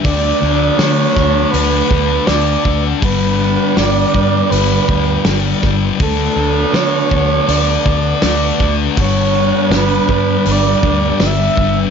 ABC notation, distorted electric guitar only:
X:1
M:4/4
L:1/8
Q:1/4=81
K:D
V:1 name="Distorted electric guitar" clef=bass
[D,A,D] [A,D] [D,A,D] [A,D] [D,A,D] [A,D] [D,A,D] [A,D] | [G,,D,G,] [D,G,] [G,,D,G,] [D,G,] [G,,D,G,] [D,G,] [G,,D,G,] [D,G,] | [D,A,D] [A,D] [D,A,D] [A,D] [D,A,D] [A,D] [D,A,D] [A,D] | [G,,D,G,] [D,G,] [G,,D,G,] [D,G,] [G,,D,G,] [D,G,] [G,,D,G,] [D,G,] |]